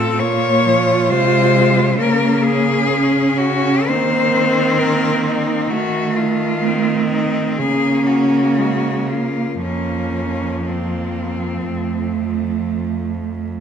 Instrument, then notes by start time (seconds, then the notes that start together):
cello
Already playing: A2 C4 F4 A4
0.18 A#2 A#3 F4 C#5
0.66 F3
1.09 C3 G#3 C5
1.99 C#3 A#3 C#4 A#4
2.44 G#4
2.90 C#4
3.38 F#4
3.87 D#3 A#3 C4 C5
4.79 A#3 A#4
5.25 D#4
5.70 D#3 A3 F#4
6.17 F4
6.64 C4
7.08 D#4
7.57 C#3 A#3 C#4 G#4
8.06 F#4
8.57 G#3
9.09 A#3 F4
9.60 F2 F3 A#3 C#4
10.65 A#3 C4
11.69 F2 A3